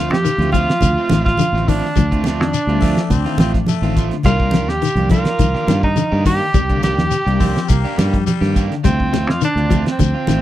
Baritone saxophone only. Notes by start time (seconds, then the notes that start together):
2.81 A3
3.10 C4
3.40 C4
3.68 A3
7.40 C4
7.69 A#3
7.98 G3
8.26 G3